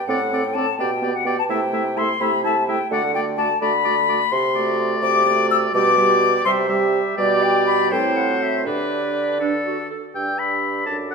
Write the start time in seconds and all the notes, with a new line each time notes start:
0.07 A2 C4 A4 D5 F#5
0.32 C4 A4 D5
0.44 G5
0.54 C4 A4 D5 A5
0.78 B2 B3 G4 D5 G5
1.02 B3 G4 D5
1.14 F#5
1.25 B3 G4 D5 G5
1.38 A5
1.49 C3 A3 E4 E5 G5
1.73 A3 E4 E5
1.96 A3 E4 E5 C6
2.20 C3 A3 E4 E5 B5
2.43 A3 E4 E5 A5
2.67 A3 E4 E5 G5
2.90 D3 A3 F#4 D5 F#5
3.13 A3 F#4 D5 G5
3.37 A3 F#4 D5 A5
3.61 D3 A3 F#4 D5 B5
3.85 A3 F#4 D5
4.08 A3 F#4 D5
4.32 C3 C6
4.54 A3 F#4 D5
5.02 C3 D6
5.26 A3 F#4 D5
5.51 E6
5.73 B2 G3 G4 D5 D6
5.97 G3 G4 D5
6.45 C3 G3 G4 E5 C6
6.69 G3 G4 E5
7.17 B2 G3 G4 D5
7.42 G5
7.66 B5
7.91 A2 C4 E4 C5 G5
8.16 F#5
8.30 F#4
8.42 E5
8.65 D3 D4 G4 B4 D5
9.40 D4 A4
9.66 F#4
9.91 A4
10.13 G2 D4 G4 G5 E6
10.38 B5
10.86 F#2 D4 A4 A5 D6
11.11 F#5